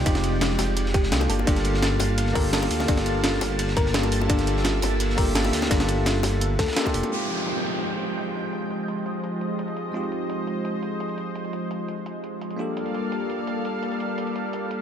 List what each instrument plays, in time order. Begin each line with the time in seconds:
Already playing: tine electric piano G#3 C4 D#4 F4 G4, analog synth pad G#3 D5 G5
0.04 detuned saw bass F1, tine electric piano G#3 C4 D#4 F4, synth arpeggio sound D#4, kick, closed hi-hat, ride
0.08 tine electric piano G4
0.15 snare, closed hi-hat
0.24 closed hi-hat, ride
0.41 synth arpeggio sound F4, snare, closed hi-hat, ride
0.50 snare
0.59 detuned saw bass F1, snare, open hi-hat, ride, high bongo
0.77 closed hi-hat, ride
0.86 snare
0.94 synth arpeggio sound G4, kick, closed hi-hat, ride
1.03 snare
1.11 detuned saw bass C2, tine electric piano A#3 D4 F4 G4 A4, synth arpeggio sound G4, snare, closed hi-hat, ride
1.21 snare, closed hi-hat, high bongo
1.29 detuned saw bass G1, analog synth pad A#3 F5 A5, synth arpeggio sound A4, open hi-hat, ride
1.39 high bongo
1.44 detuned saw bass G1, tine electric piano A#3 D4 F4 G4, synth arpeggio sound D4, kick, closed hi-hat, ride
1.49 tine electric piano A4
1.56 snare, closed hi-hat
1.64 closed hi-hat, ride
1.74 snare
1.82 synth arpeggio sound F4, snare, closed hi-hat, ride
2.00 detuned saw bass G1, open hi-hat, ride, high bongo
2.18 closed hi-hat, ride
2.27 snare
2.33 detuned saw bass G1, tine electric piano A#3 D4 F4 G4, synth arpeggio sound A#4, kick, closed hi-hat, open hi-hat
2.38 tine electric piano A4
2.53 synth arpeggio sound A4, snare, closed hi-hat, ride
2.62 snare, closed hi-hat, high bongo
2.71 detuned saw bass D2, open hi-hat, ride
2.80 snare, high bongo
2.86 detuned saw bass G1, tine electric piano A#3 D4 F4 G4, synth arpeggio sound D4, kick, closed hi-hat, ride
2.91 tine electric piano A4
2.97 snare, closed hi-hat
3.06 closed hi-hat, ride
3.24 synth arpeggio sound F4, snare, closed hi-hat, ride
3.33 snare
3.41 detuned saw bass G1, snare, open hi-hat, ride, high bongo
3.59 closed hi-hat, ride
3.68 snare
3.77 detuned saw bass G1, synth arpeggio sound A#4, kick, closed hi-hat, ride
3.86 snare
3.93 tine electric piano A#3 D4 F4 G4 A4, synth arpeggio sound A4, snare, closed hi-hat, ride
4.03 snare, closed hi-hat, high bongo
4.12 analog synth pad E5, open hi-hat, ride
4.21 high bongo
4.27 detuned saw bass G1, tine electric piano A#3 D4 F4 G4, synth arpeggio sound D4, kick, closed hi-hat, ride
4.32 tine electric piano A4
4.39 snare, closed hi-hat
4.47 closed hi-hat, ride
4.57 snare
4.64 synth arpeggio sound F4, snare, closed hi-hat, ride
4.82 detuned saw bass G1, open hi-hat, ride, high bongo
5.00 closed hi-hat, ride
5.10 snare
5.15 detuned saw bass G1, tine electric piano A#3 D4 F4 G4, synth arpeggio sound A#4, kick, closed hi-hat, open hi-hat
5.20 tine electric piano A4
5.35 synth arpeggio sound A4, snare, closed hi-hat, ride
5.44 snare, closed hi-hat, high bongo
5.53 detuned saw bass D2, snare, open hi-hat, ride
5.62 snare, ride, high bongo
5.68 detuned saw bass G1, tine electric piano A#3 D4 F4 G4, synth arpeggio sound D4, kick, snare, closed hi-hat, ride
5.73 tine electric piano A4
5.80 snare, closed hi-hat, ride
5.88 closed hi-hat, ride
6.06 synth arpeggio sound F4, snare, closed hi-hat, ride
6.15 snare
6.23 detuned saw bass G1, snare, open hi-hat, ride, high bongo
6.41 closed hi-hat
6.59 detuned saw bass D2, synth arpeggio sound A4, kick, snare, closed hi-hat, ride
6.68 snare, ride
6.72 tine electric piano A#3 D4, snare, ride
6.76 synth arpeggio sound F4, tine electric piano F4 G4 A4, snare, closed hi-hat, ride
6.84 tine electric piano A#3 D4 F4 G4 A4, kick, snare, closed hi-hat, high bongo
6.94 detuned saw bass F1, open hi-hat, ride
7.03 closed hi-hat, high bongo
7.09 analog synth pad F3 G#3 C5 D#5 G5, tine electric piano G#3 C4 D#4 F4, closed hi-hat, downlifter
7.14 tine electric piano G4
7.21 closed hi-hat
7.29 closed hi-hat
7.47 closed hi-hat
7.65 closed hi-hat
7.82 closed hi-hat
8.00 closed hi-hat
8.18 closed hi-hat
8.27 closed hi-hat
8.35 closed hi-hat
8.53 closed hi-hat
8.62 closed hi-hat
8.71 closed hi-hat
8.88 closed hi-hat
9.06 closed hi-hat
9.24 closed hi-hat
9.41 closed hi-hat
9.59 closed hi-hat
9.68 closed hi-hat
9.77 closed hi-hat
9.92 tine electric piano G#3 C4 D#4 F4, closed hi-hat
9.97 tine electric piano G4
10.03 closed hi-hat
10.12 closed hi-hat
10.30 closed hi-hat
10.47 closed hi-hat
10.65 closed hi-hat
10.83 closed hi-hat
11.00 closed hi-hat
11.09 closed hi-hat
11.18 closed hi-hat
11.35 closed hi-hat
11.45 closed hi-hat
11.53 closed hi-hat
11.71 closed hi-hat
11.88 closed hi-hat
12.06 closed hi-hat
12.24 closed hi-hat
12.41 closed hi-hat
12.51 closed hi-hat
12.57 analog synth pad G3 A#3 A4 D5 F5, tine electric piano A#3 D4 F4 G4, closed hi-hat
12.61 tine electric piano A4
12.77 closed hi-hat
12.86 closed hi-hat
12.94 closed hi-hat
13.12 closed hi-hat
13.30 closed hi-hat
13.47 closed hi-hat
13.65 closed hi-hat
13.83 closed hi-hat
13.92 closed hi-hat
14.00 closed hi-hat
14.18 closed hi-hat
14.27 closed hi-hat
14.36 closed hi-hat
14.53 closed hi-hat
14.71 closed hi-hat